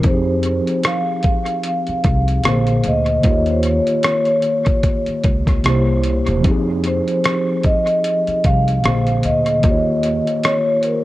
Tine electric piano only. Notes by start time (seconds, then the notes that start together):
0.00 F3 C4
0.05 D#4 G4
0.11 G#4
2.43 A#2 D3 A#3
2.47 G#4 C5
3.20 D#3 A#3
3.26 F4 G4
3.31 C#5
5.63 C3 A#3 E4
5.67 G4 C5
6.40 F3 C4
6.46 D#4 G4
6.51 G#4
8.82 A#2 D3 A#3
8.86 G#4 C5
9.59 D#3 A#3
9.65 F4 G4
9.70 C#5